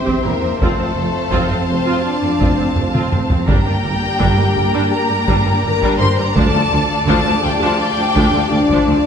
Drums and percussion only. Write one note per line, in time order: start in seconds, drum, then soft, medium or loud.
0.08 taiko medium
0.62 taiko medium
1.32 taiko medium
2.40 taiko medium
2.76 taiko low-mid medium
2.95 taiko mid medium
3.12 taiko low-mid medium
3.30 taiko low medium
3.48 taiko medium
4.20 taiko medium
5.28 taiko medium
5.83 taiko medium
6.36 taiko medium
7.08 taiko medium
8.16 taiko medium
8.70 taiko medium